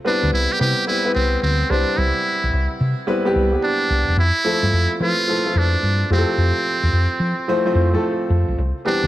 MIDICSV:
0, 0, Header, 1, 4, 480
1, 0, Start_track
1, 0, Tempo, 550459
1, 1720, Time_signature, 4, 2, 24, 8
1, 7911, End_track
2, 0, Start_track
2, 0, Title_t, "Muted trumpet"
2, 0, Program_c, 0, 59
2, 57, Note_on_c, 0, 62, 101
2, 273, Note_off_c, 0, 62, 0
2, 294, Note_on_c, 0, 64, 107
2, 454, Note_on_c, 0, 67, 112
2, 467, Note_off_c, 0, 64, 0
2, 526, Note_off_c, 0, 67, 0
2, 531, Note_on_c, 0, 67, 119
2, 749, Note_off_c, 0, 67, 0
2, 764, Note_on_c, 0, 64, 109
2, 986, Note_off_c, 0, 64, 0
2, 1000, Note_on_c, 0, 60, 94
2, 1223, Note_off_c, 0, 60, 0
2, 1240, Note_on_c, 0, 60, 96
2, 1485, Note_on_c, 0, 62, 93
2, 1499, Note_off_c, 0, 60, 0
2, 1730, Note_on_c, 0, 64, 94
2, 1743, Note_off_c, 0, 62, 0
2, 2446, Note_off_c, 0, 64, 0
2, 3172, Note_on_c, 0, 62, 107
2, 3613, Note_off_c, 0, 62, 0
2, 3655, Note_on_c, 0, 64, 117
2, 4333, Note_off_c, 0, 64, 0
2, 4383, Note_on_c, 0, 65, 122
2, 4865, Note_on_c, 0, 62, 106
2, 4878, Note_off_c, 0, 65, 0
2, 5333, Note_off_c, 0, 62, 0
2, 5344, Note_on_c, 0, 60, 92
2, 7218, Note_off_c, 0, 60, 0
2, 7730, Note_on_c, 0, 62, 100
2, 7911, Note_off_c, 0, 62, 0
2, 7911, End_track
3, 0, Start_track
3, 0, Title_t, "Grand piano"
3, 0, Program_c, 1, 0
3, 0, Control_c, 1, 64, 127
3, 39, Note_on_c, 1, 55, 85
3, 42, Note_on_c, 1, 59, 82
3, 44, Note_on_c, 1, 60, 82
3, 46, Note_on_c, 1, 64, 91
3, 49, Note_on_c, 1, 71, 100
3, 347, Note_off_c, 1, 55, 0
3, 348, Note_off_c, 1, 59, 0
3, 349, Note_off_c, 1, 60, 0
3, 350, Note_off_c, 1, 64, 0
3, 351, Note_off_c, 1, 71, 0
3, 515, Note_on_c, 1, 55, 79
3, 518, Note_on_c, 1, 59, 73
3, 521, Note_on_c, 1, 60, 73
3, 523, Note_on_c, 1, 64, 71
3, 528, Note_on_c, 1, 71, 83
3, 692, Note_off_c, 1, 55, 0
3, 694, Note_off_c, 1, 59, 0
3, 695, Note_off_c, 1, 60, 0
3, 696, Note_off_c, 1, 64, 0
3, 699, Note_off_c, 1, 71, 0
3, 758, Note_on_c, 1, 55, 83
3, 762, Note_on_c, 1, 59, 77
3, 764, Note_on_c, 1, 60, 76
3, 767, Note_on_c, 1, 64, 79
3, 769, Note_on_c, 1, 71, 99
3, 854, Note_off_c, 1, 55, 0
3, 856, Note_off_c, 1, 59, 0
3, 857, Note_off_c, 1, 60, 0
3, 859, Note_off_c, 1, 64, 0
3, 860, Note_off_c, 1, 71, 0
3, 913, Note_on_c, 1, 55, 77
3, 914, Note_on_c, 1, 59, 72
3, 917, Note_on_c, 1, 60, 70
3, 922, Note_on_c, 1, 64, 70
3, 922, Note_on_c, 1, 71, 92
3, 1243, Note_off_c, 1, 55, 0
3, 1244, Note_off_c, 1, 59, 0
3, 1245, Note_off_c, 1, 60, 0
3, 1248, Note_off_c, 1, 64, 0
3, 1248, Note_off_c, 1, 71, 0
3, 1481, Note_on_c, 1, 71, 83
3, 1482, Note_on_c, 1, 55, 94
3, 1486, Note_on_c, 1, 60, 81
3, 1489, Note_on_c, 1, 64, 78
3, 1491, Note_on_c, 1, 72, 94
3, 2094, Note_off_c, 1, 55, 0
3, 2094, Note_off_c, 1, 71, 0
3, 2096, Note_off_c, 1, 60, 0
3, 2098, Note_off_c, 1, 64, 0
3, 2099, Note_off_c, 1, 72, 0
3, 2676, Note_on_c, 1, 55, 105
3, 2677, Note_on_c, 1, 59, 92
3, 2680, Note_on_c, 1, 60, 96
3, 2684, Note_on_c, 1, 64, 96
3, 2685, Note_on_c, 1, 71, 112
3, 2773, Note_off_c, 1, 55, 0
3, 2774, Note_off_c, 1, 59, 0
3, 2775, Note_off_c, 1, 60, 0
3, 2777, Note_off_c, 1, 64, 0
3, 2778, Note_off_c, 1, 71, 0
3, 2836, Note_on_c, 1, 55, 102
3, 2837, Note_on_c, 1, 59, 93
3, 2839, Note_on_c, 1, 60, 94
3, 2842, Note_on_c, 1, 64, 86
3, 2847, Note_on_c, 1, 67, 110
3, 2954, Note_off_c, 1, 55, 0
3, 2954, Note_off_c, 1, 59, 0
3, 2955, Note_off_c, 1, 60, 0
3, 2957, Note_off_c, 1, 64, 0
3, 2959, Note_off_c, 1, 67, 0
3, 3070, Note_on_c, 1, 55, 74
3, 3074, Note_on_c, 1, 59, 69
3, 3077, Note_on_c, 1, 60, 67
3, 3077, Note_on_c, 1, 64, 63
3, 3083, Note_on_c, 1, 71, 81
3, 3574, Note_off_c, 1, 55, 0
3, 3576, Note_off_c, 1, 59, 0
3, 3577, Note_off_c, 1, 60, 0
3, 3578, Note_off_c, 1, 64, 0
3, 3580, Note_off_c, 1, 71, 0
3, 3654, Control_c, 1, 64, 0
3, 3786, Control_c, 1, 64, 127
3, 3876, Note_on_c, 1, 53, 98
3, 3881, Note_on_c, 1, 57, 83
3, 3881, Note_on_c, 1, 60, 82
3, 3885, Note_on_c, 1, 64, 77
3, 3888, Note_on_c, 1, 69, 106
3, 4185, Note_off_c, 1, 53, 0
3, 4187, Note_off_c, 1, 57, 0
3, 4187, Note_off_c, 1, 60, 0
3, 4190, Note_off_c, 1, 64, 0
3, 4191, Note_off_c, 1, 69, 0
3, 4360, Note_on_c, 1, 53, 79
3, 4362, Note_on_c, 1, 57, 72
3, 4365, Note_on_c, 1, 60, 76
3, 4365, Note_on_c, 1, 64, 71
3, 4368, Note_on_c, 1, 71, 82
3, 4535, Note_off_c, 1, 53, 0
3, 4536, Note_off_c, 1, 57, 0
3, 4537, Note_off_c, 1, 60, 0
3, 4537, Note_off_c, 1, 64, 0
3, 4538, Note_off_c, 1, 71, 0
3, 4603, Note_on_c, 1, 53, 86
3, 4608, Note_on_c, 1, 57, 75
3, 4611, Note_on_c, 1, 60, 84
3, 4611, Note_on_c, 1, 64, 74
3, 4616, Note_on_c, 1, 69, 96
3, 4697, Note_off_c, 1, 53, 0
3, 4699, Note_off_c, 1, 57, 0
3, 4701, Note_off_c, 1, 60, 0
3, 4701, Note_off_c, 1, 64, 0
3, 4703, Note_off_c, 1, 69, 0
3, 4759, Note_on_c, 1, 53, 78
3, 4765, Note_on_c, 1, 57, 69
3, 4768, Note_on_c, 1, 60, 77
3, 4769, Note_on_c, 1, 64, 71
3, 4769, Note_on_c, 1, 69, 87
3, 5087, Note_off_c, 1, 53, 0
3, 5089, Note_off_c, 1, 57, 0
3, 5091, Note_off_c, 1, 60, 0
3, 5092, Note_off_c, 1, 64, 0
3, 5092, Note_off_c, 1, 69, 0
3, 5324, Note_on_c, 1, 53, 89
3, 5325, Note_on_c, 1, 57, 82
3, 5328, Note_on_c, 1, 60, 79
3, 5331, Note_on_c, 1, 64, 81
3, 5333, Note_on_c, 1, 67, 79
3, 5389, Note_on_c, 1, 69, 97
3, 5401, Note_off_c, 1, 67, 0
3, 5935, Note_off_c, 1, 53, 0
3, 5936, Note_off_c, 1, 57, 0
3, 5937, Note_off_c, 1, 60, 0
3, 5939, Note_off_c, 1, 64, 0
3, 5968, Note_off_c, 1, 69, 0
3, 6522, Note_on_c, 1, 53, 101
3, 6529, Note_on_c, 1, 57, 91
3, 6530, Note_on_c, 1, 60, 89
3, 6532, Note_on_c, 1, 64, 89
3, 6533, Note_on_c, 1, 72, 118
3, 6616, Note_off_c, 1, 53, 0
3, 6620, Note_off_c, 1, 57, 0
3, 6620, Note_off_c, 1, 60, 0
3, 6621, Note_off_c, 1, 64, 0
3, 6622, Note_off_c, 1, 72, 0
3, 6675, Note_on_c, 1, 53, 103
3, 6677, Note_on_c, 1, 57, 91
3, 6682, Note_on_c, 1, 60, 95
3, 6684, Note_on_c, 1, 64, 89
3, 6688, Note_on_c, 1, 72, 109
3, 6793, Note_off_c, 1, 53, 0
3, 6794, Note_off_c, 1, 57, 0
3, 6796, Note_off_c, 1, 60, 0
3, 6798, Note_off_c, 1, 64, 0
3, 6799, Note_off_c, 1, 72, 0
3, 6918, Note_on_c, 1, 53, 87
3, 6919, Note_on_c, 1, 57, 84
3, 6921, Note_on_c, 1, 60, 82
3, 6923, Note_on_c, 1, 64, 80
3, 6928, Note_on_c, 1, 69, 106
3, 7418, Note_off_c, 1, 53, 0
3, 7419, Note_off_c, 1, 57, 0
3, 7419, Note_off_c, 1, 60, 0
3, 7421, Note_off_c, 1, 64, 0
3, 7423, Note_off_c, 1, 69, 0
3, 7490, Control_c, 1, 64, 0
3, 7632, Control_c, 1, 64, 127
3, 7715, Note_on_c, 1, 52, 95
3, 7719, Note_on_c, 1, 55, 80
3, 7724, Note_on_c, 1, 60, 85
3, 7725, Note_on_c, 1, 59, 84
3, 7727, Note_on_c, 1, 67, 101
3, 7911, Note_off_c, 1, 52, 0
3, 7911, Note_off_c, 1, 55, 0
3, 7911, Note_off_c, 1, 59, 0
3, 7911, Note_off_c, 1, 60, 0
3, 7911, Note_off_c, 1, 67, 0
3, 7911, End_track
4, 0, Start_track
4, 0, Title_t, "Fingered electric bass"
4, 0, Program_c, 2, 33
4, 204, Note_on_c, 2, 38, 96
4, 260, Note_off_c, 2, 38, 0
4, 288, Note_on_c, 2, 36, 95
4, 396, Note_off_c, 2, 36, 0
4, 530, Note_on_c, 2, 48, 108
4, 637, Note_off_c, 2, 48, 0
4, 1010, Note_on_c, 2, 36, 89
4, 1177, Note_off_c, 2, 36, 0
4, 1249, Note_on_c, 2, 38, 94
4, 1416, Note_off_c, 2, 38, 0
4, 1484, Note_on_c, 2, 36, 96
4, 1594, Note_off_c, 2, 36, 0
4, 1727, Note_on_c, 2, 36, 117
4, 1835, Note_off_c, 2, 36, 0
4, 2125, Note_on_c, 2, 35, 89
4, 2181, Note_off_c, 2, 35, 0
4, 2210, Note_on_c, 2, 36, 99
4, 2318, Note_off_c, 2, 36, 0
4, 2447, Note_on_c, 2, 48, 90
4, 2556, Note_off_c, 2, 48, 0
4, 2927, Note_on_c, 2, 36, 93
4, 3095, Note_off_c, 2, 36, 0
4, 3404, Note_on_c, 2, 36, 83
4, 3513, Note_off_c, 2, 36, 0
4, 3559, Note_on_c, 2, 28, 86
4, 3617, Note_off_c, 2, 28, 0
4, 3639, Note_on_c, 2, 41, 105
4, 3750, Note_off_c, 2, 41, 0
4, 4037, Note_on_c, 2, 43, 87
4, 4096, Note_off_c, 2, 43, 0
4, 4124, Note_on_c, 2, 41, 95
4, 4233, Note_off_c, 2, 41, 0
4, 4364, Note_on_c, 2, 53, 105
4, 4473, Note_off_c, 2, 53, 0
4, 4844, Note_on_c, 2, 41, 105
4, 5013, Note_off_c, 2, 41, 0
4, 5084, Note_on_c, 2, 43, 100
4, 5253, Note_off_c, 2, 43, 0
4, 5323, Note_on_c, 2, 41, 101
4, 5433, Note_off_c, 2, 41, 0
4, 5562, Note_on_c, 2, 41, 107
4, 5672, Note_off_c, 2, 41, 0
4, 5959, Note_on_c, 2, 40, 96
4, 6018, Note_off_c, 2, 40, 0
4, 6043, Note_on_c, 2, 41, 94
4, 6153, Note_off_c, 2, 41, 0
4, 6277, Note_on_c, 2, 53, 96
4, 6389, Note_off_c, 2, 53, 0
4, 6759, Note_on_c, 2, 41, 99
4, 6929, Note_off_c, 2, 41, 0
4, 7238, Note_on_c, 2, 41, 102
4, 7350, Note_off_c, 2, 41, 0
4, 7398, Note_on_c, 2, 35, 99
4, 7457, Note_off_c, 2, 35, 0
4, 7485, Note_on_c, 2, 36, 112
4, 7594, Note_off_c, 2, 36, 0
4, 7879, Note_on_c, 2, 38, 95
4, 7911, Note_off_c, 2, 38, 0
4, 7911, End_track
0, 0, End_of_file